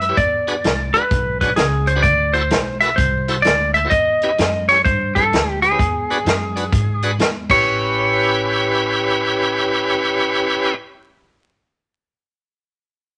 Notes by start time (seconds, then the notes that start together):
Already playing: F#2 E5
0.01 B4 E5, closed hi-hat
0.09 E4 G4 B4 C#5
0.17 E2 D5, kick, closed hi-hat
0.47 D4 F#4 G#4 B4, closed hi-hat
0.64 C2, snare, closed hi-hat
0.94 D4 F#4 G#4 B4, closed hi-hat
1.11 B1, kick, closed hi-hat
1.41 D4 F#4 G#4 B4 C#5, kick, closed hi-hat
1.56 C#2 G#4, snare, closed hi-hat
1.87 G#4 C5 C#5, closed hi-hat
1.96 D4 F#4 G#4 B4
2.02 D2 D5, kick, closed hi-hat
2.33 E4 F#4 A4 C5, closed hi-hat
2.50 B1, snare, closed hi-hat
2.80 E4 F#4 A4 B4 E5, snare, closed hi-hat
2.96 C2 C5, kick, closed hi-hat
3.28 E4 F#4 A4 C5, closed hi-hat
3.42 D2 D5, snare, closed hi-hat
3.74 A4 C5 E5, closed hi-hat
3.84 E4 F#4 A4 C5
3.90 E2 D#5, kick, closed hi-hat
4.22 C#4 E4 G4 B4, closed hi-hat
4.38 F#2, snare, closed hi-hat
4.69 C#4 E4 G4 C#5, snare, closed hi-hat
4.84 G2 C5, kick, closed hi-hat
5.15 C#4 E4 G4 A4 B4, kick, closed hi-hat
5.32 D2, snare, closed hi-hat
5.62 G4 G#4 B4, closed hi-hat
5.71 C#4 E4 G4 B4
5.79 E2, kick, closed hi-hat
6.10 D4 F#4 G#4 B4, closed hi-hat
6.25 F#2, snare, closed hi-hat
6.56 D4 F#4 G#4 B4, closed hi-hat
6.72 G#2, kick, closed hi-hat
7.02 D4 F#4 G#4 B4, closed hi-hat
7.19 E2, snare, closed hi-hat
7.50 A1 C#4 E4 G4 B4 C#5, kick, crash